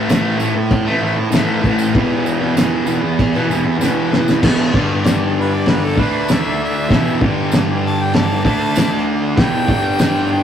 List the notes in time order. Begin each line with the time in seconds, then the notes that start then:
Already playing: A3
0.08 A2 E3 A4 C5 E5, snare, tambourine, crash
0.12 A3
0.38 A2 E3 A3 A4 C5 E5, tambourine
0.55 muted distorted electric guitar stroke
0.70 A4 C5 G5, kick, tambourine, crash
0.85 E3 A3
1.00 A2 E3 A3 A4 C5 E5
1.16 muted distorted electric guitar stroke
1.30 A2 E3 A4 C5 E5, snare, tambourine, crash
1.35 A3
1.47 tambourine
1.62 A2 E3 A3 A4 C5 F#5, kick, tambourine
1.78 tambourine
1.94 E2 B2 E3 G4 B4 E5, kick, crash
2.25 G4 B4 G5, tambourine
2.39 B2 E3
2.55 E2 B2 E3 G4 B4 E5, snare, tambourine, crash
2.85 E2 B2 E3 G4 B4 F#5, tambourine
3.02 muted distorted electric guitar stroke
3.18 G4 B4 E5, kick, tambourine, crash
3.32 B2 E3, tambourine
3.47 E2 B2 G4 B4 E5
3.51 E3, tambourine
3.65 muted distorted electric guitar stroke
3.78 E2 B2 G4 B4 F#5, tambourine
3.82 E3, snare
4.11 E2 B2 E3 G4 B4 E5, snare, tambourine
4.28 snare, tambourine
4.41 E2 B2 E3 G4 B4 E5, kick, snare, crash
4.73 G2 D3 G3 D4 G4 D5, kick
5.04 snare, tambourine, crash
5.38 D4 G4 A4 B4
5.54 D5
5.66 D4 G4 B4 D5, snare, crash
5.84 A4
5.97 D3 A3 D4 A4 B4 D5, kick
6.28 snare, tambourine, crash
6.33 E5
6.60 D4 A4 D5
6.64 E5
6.87 E2 B2 E3 E4 G4 B4, kick, crash
6.92 snare
7.18 G2 D3 G3 D4 G4 D5, kick
7.52 snare, tambourine, crash
7.80 D4 G4 D5
7.86 A5
8.03 G5
8.11 D4 G4 D5, crash
8.15 A5, snare
8.44 D3 A3 D4 A4 D5 A5, kick
8.76 snare, tambourine, crash
9.04 D4 A4 D5
9.35 E2 B2 E3 E4 G4 B4 G5, kick, snare, crash
9.65 G2 D3 G3 D4 G4 D5, kick
9.99 snare, tambourine, crash
10.29 D4 G4 D5 G5